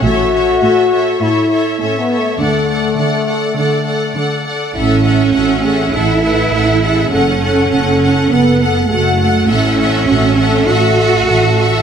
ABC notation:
X:1
M:4/4
L:1/8
Q:1/4=101
K:A
V:1 name="Violin section"
e e e e e e e e | f f f f f f f f | f f f f f f f f | f f f f f f f f |
f f f f f f f f |]
V:2 name="Violin section"
c c c c c c c c | d d d d d d d d | e e e e e e e e | f f f f f f f f |
e e e e e e e e |]
V:3 name="Viola section"
A A A A A A A A | A A A A A A A A | A A A A A A A A | A A A A A A A A |
A A A A A A A A |]
V:4 name="French horn section"
F4 E2 (3C B, A, | A,6- A, z | E2 F G A B A G | A4 B A F2 |
E2 F A3 A2 |]
V:5 name="Cello section" clef=bass
A,,2 A,,2 A,,2 A,,2 | D,2 D,2 D,2 D,2 | C4 E4 | C4 B,2 A,2 |
C4 F4 |]
V:6 name="Double bass section" clef=bass
A,,,2 z6 | D,,2 z6 | A,,,2 A,,,2 A,,,2 A,,,2 | F,,,2 F,,,2 F,,,2 F,,,2 |
A,,,2 A,,,2 A,,,2 A,,,2 |]